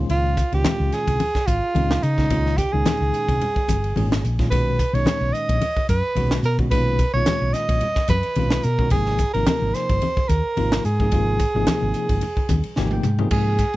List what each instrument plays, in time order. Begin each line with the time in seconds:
Already playing: tine electric piano A#2 D#3 G#3 C#4 F4
0.09 fingered electric bass C#2, soprano saxophone F4, ride, muted conga
0.37 kick, hi-hat pedal, ride, muted conga
0.52 fingered electric bass C#2, tine electric piano A#2 D#3 G#3 C#4 F4, soprano saxophone G4, ride
0.64 snare, ride, high conga
0.80 fingered electric bass C#2
0.92 soprano saxophone G#4, snare, hi-hat pedal, ride, muted conga
1.07 fingered electric bass C2, kick, ride
1.20 ride, muted conga, high conga
1.35 muted fingered electric bass stroke, kick, snare
1.47 fingered electric bass G#1, soprano saxophone F4, kick, hi-hat pedal, ride
1.74 fingered electric bass C#2, tine electric piano A#2 D#3 G#3 C#4 D#4, ride, high conga
1.91 snare
2.03 fingered electric bass C#3, soprano saxophone D#4, hi-hat pedal, ride
2.17 tine electric piano A#2 D#3 G#3 C#4 D#4, kick, snare
2.30 fingered electric bass C#2, tine electric piano A#2 D#3 G#3 C#4 F4, kick, ride, muted conga
2.46 snare
2.57 soprano saxophone G4, kick, hi-hat pedal, ride, muted conga
2.72 fingered electric bass C#2, tine electric piano A#2 D#3 G#3 C#4 D#4, soprano saxophone G#4
2.86 snare, ride, high conga
3.00 fingered electric bass C#2
3.13 hi-hat pedal, ride, muted conga
3.29 fingered electric bass C2, kick, ride
3.41 ride, muted conga, low conga
3.56 muted fingered electric bass stroke, kick
3.68 fingered electric bass G1, kick, hi-hat pedal, ride, high conga
3.84 ride
3.96 fingered electric bass G#1, tine electric piano A#2 D#3 G#3 C#4 G#4, ride, high conga
4.12 snare
4.24 fingered electric bass A#1, hi-hat pedal, ride
4.39 tine electric piano A#2 D#3 G#3 C#4 F4, kick, snare
4.51 fingered electric bass B1, tine electric piano A#2 D#3 G#3 C#4 F#4, soprano saxophone B4, kick, ride, muted conga
4.79 kick, hi-hat pedal, ride, muted conga
4.93 fingered electric bass B1, tine electric piano A#2 D#3 G#3 C#4 D#4, soprano saxophone C#5, ride
5.06 snare, ride, high conga
5.21 fingered electric bass B1
5.33 soprano saxophone D#5, hi-hat pedal, ride, muted conga
5.49 fingered electric bass A#1, kick, ride
5.61 ride, muted conga, high conga
5.76 muted fingered electric bass stroke, kick
5.89 fingered electric bass F#2, soprano saxophone B4, kick, hi-hat pedal, ride
6.03 muted fingered electric bass stroke
6.15 fingered electric bass B1, tine electric piano A#2 D#3 G#3 C#4 F#4, ride, high conga
6.31 snare
6.43 fingered electric bass B2, soprano saxophone A#4, hi-hat pedal, ride
6.59 tine electric piano A#2 D#3 G#3 C#4 F#4, kick
6.71 fingered electric bass B1, tine electric piano A#2 D#3 G#3 C#4 F4, soprano saxophone B4, kick, ride, muted conga
6.99 kick, hi-hat pedal, ride, muted conga
7.14 fingered electric bass B1, tine electric piano A#2 D#3 G#3 C#4 F4, soprano saxophone C#5
7.26 snare, ride, high conga
7.42 fingered electric bass B1
7.54 soprano saxophone D#5, snare, hi-hat pedal, ride, muted conga
7.69 fingered electric bass A#1, kick, ride
7.81 ride, muted conga, low conga
7.95 muted fingered electric bass stroke, kick, snare
8.08 fingered electric bass F#2, soprano saxophone B4, kick, hi-hat pedal, ride, high conga
8.23 muted fingered electric bass stroke, ride
8.35 fingered electric bass B1, tine electric piano A#2 D#3 G#3 C#4 F4, ride, high conga
8.50 snare
8.63 fingered electric bass B2, soprano saxophone A#4, hi-hat pedal, ride
8.79 tine electric piano A#2 D#3 G#3 C#4 F#4, kick
8.90 fingered electric bass G#1, tine electric piano C3 F3 A#3 D#4 G#4, soprano saxophone G#4, kick, ride, muted conga
9.06 snare
9.18 kick, hi-hat pedal, ride, muted conga
9.34 fingered electric bass G#1, tine electric piano C3 F3 A#3 D#4 A#4, soprano saxophone A#4, ride
9.46 snare, ride, high conga
9.62 fingered electric bass G#1
9.74 soprano saxophone C5, snare, hi-hat pedal, ride, muted conga
9.89 fingered electric bass G1, kick, ride
10.02 ride, muted conga, high conga
10.17 muted fingered electric bass stroke, kick
10.28 fingered electric bass D#2, soprano saxophone A#4, kick, hi-hat pedal, ride
10.57 fingered electric bass G#1, tine electric piano C3 F3 A#3 D#4 F4, ride, high conga
10.72 snare
10.85 fingered electric bass G#2, soprano saxophone G#4, hi-hat pedal, ride
11.00 tine electric piano C3 F3 A#3 D#4 G#4, kick
11.12 fingered electric bass G#1, tine electric piano C3 F3 A#3 D#4 F4, kick, ride, muted conga
11.39 kick, hi-hat pedal, ride
11.55 fingered electric bass G#1, tine electric piano C3 F3 A#3 D#4 G#4
11.67 snare, ride, high conga
11.82 fingered electric bass G#1
11.94 hi-hat pedal, ride, muted conga
12.09 fingered electric bass G1, kick, ride
12.21 ride, muted conga, low conga
12.37 muted fingered electric bass stroke, kick
12.49 fingered electric bass D#2, kick, hi-hat pedal, ride, high conga, low conga
12.64 ride
12.76 fingered electric bass G#1, tine electric piano C3 F3 A#3 D#4 G4 G#5, snare, high conga
12.91 tine electric piano G5, high tom
13.03 fingered electric bass G#2, hi-hat pedal, mid tom
13.19 tine electric piano C3 F3 A#3 D#4 G#4, floor tom
13.31 fingered electric bass G#2, tine electric piano C3 F3 A#3 D#4 G#4, soprano saxophone G#4, kick, crash
13.58 kick, hi-hat pedal, ride